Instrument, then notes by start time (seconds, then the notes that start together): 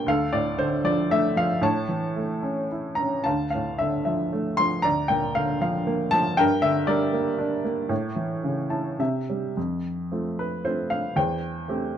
upright piano
0.06 D2 A4 F5
0.33 A2 D5
0.58 D3 C5
0.84 F3 D5
1.10 A3 E5
1.36 F3 F5
1.61 A2 C#5 A5
1.89 E3
2.16 A3
2.43 C#4
2.72 E4
2.95 A#5
3.00 C#4
3.24 D2 F5 A5
3.50 F5
3.55 A2
3.79 D3 E5
4.05 F3 E5
4.33 A3
4.57 F3 C6
4.82 D2 D5 A#5
5.08 A#2 G5
5.35 D3 F5
5.61 F3 F5
5.87 A#3
6.11 F3 A5
6.37 G2 A#4 G5
6.62 D3 E5
6.87 G3 A#4 D5
7.13 A#3
7.38 D4
7.65 A#3
7.89 A2
8.16 E3
8.44 C#3
8.70 E4 A5
8.99 C3 E5
9.30 G3
9.57 F2
10.12 A3 C4 F4
10.39 B4
10.64 A3 C4 F4 C5
10.90 F5
11.16 E2 C5 G5
11.68 A3 C4 G4